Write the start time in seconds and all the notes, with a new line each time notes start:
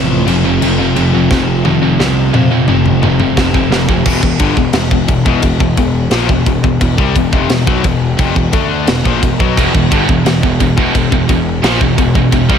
Already playing: A1 F2 C3 F3
0.27 F1 F2 C3 F3, crash
0.44 F2 C3
0.61 F1 F2 C3 F3, crash
0.78 F2 C3
0.96 F1 F2 C3 F3, crash
1.13 F2 C3
1.31 F1 F2 C3 F3, kick, snare
1.65 F1 F2 C3 F3, high tom
1.82 F2 C3
1.99 C2 F2 C3 F3, snare
2.34 F2 C3 F3, mid tom
2.51 F2 C3
2.68 F1 F2 C3 F3, mid tom
2.86 mid tom
3.02 F2 C3 F3, mid tom
3.20 F2 C3, mid tom
3.37 F1 F2 C3 F3, kick, snare
3.54 F2 C3, kick
3.71 F1 F2 C3 F3, snare
3.89 F2 C3, kick
4.05 E1 E2 B2, kick, crash
4.23 E1 E2 B2, kick
4.39 G1 G2 D3, kick, ride
4.56 E1 E2 B2, kick
4.73 E1 E2 B2, snare, ride
4.91 E1 E2 B2, kick
5.08 E1 E2 B2, kick, ride
5.25 E1 E2 B2, kick
5.42 E1 E2 B2, kick, ride
5.60 E1 E2 B2, kick
5.77 E1 E2 B2, kick, ride
6.11 A#1 A#2 F3, snare, ride
6.29 E1 E2 B2, kick
6.46 E1 E2 B2, kick, ride
6.64 E1 E2 B2, kick
6.81 E1 E2 B2, kick, ride
6.98 C2 C3 G3, kick
7.15 E1 E2 B2, kick, ride
7.33 F1 F2 C3, kick
7.50 E1 E2 B2, snare, ride
7.67 B1 B2 F#3, kick
7.84 E1 E2 B2, kick, ride
8.19 F1 F2 C3, kick, ride
8.36 E1 E2 B2, kick
8.53 D2 D3 A3 D4, kick, ride
8.87 E1 E2 B2, snare, ride
9.05 A#1 A#2 F3, kick
9.22 E1 E2 B2, kick, ride
9.40 B1 B2 F#3, kick
9.57 E1 E2 B2, kick, ride
9.74 E1 E2 B2, kick
9.91 G1 G2 D3, kick, ride
10.09 E1 E2 B2, kick
10.26 E1 E2 B2, snare, ride
10.43 E1 E2 B2, kick
10.60 E1 E2 B2, kick, ride
10.77 E1 E2 B2, kick
10.95 E1 E2 B2, kick, ride
11.12 E1 E2 B2, kick
11.29 E1 E2 B2, kick, ride
11.64 A#1 A#2 F3, snare, ride
11.81 E1 E2 B2, kick
11.98 E1 E2 B2, kick, ride
12.15 E1 E2 B2, kick
12.32 E1 E2 B2, kick, ride
12.50 C2 C3 G3, kick